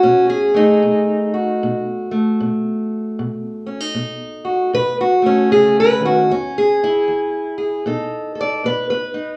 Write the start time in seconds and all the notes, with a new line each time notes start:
Already playing: A3 F#4
0.03 B2 C#4
0.30 G#4
0.54 A3 D#4
0.83 B2
1.34 F#4
1.63 B2
2.11 A3
2.40 B2
3.19 B2
3.66 C#4
3.80 D#4
3.95 B2
4.45 F#4
4.73 B2 B4
5.01 F#4
5.22 A3
5.26 C#4
5.51 C#3 G#4
5.80 B4
6.00 D#3
6.05 F#4
6.30 E2 C#4
6.58 G#4
6.84 E4
7.08 E2
7.58 G#4
7.86 B2 D#4 A4
8.35 A4
8.41 D5
8.64 B2 B4
8.90 B4
9.14 D#4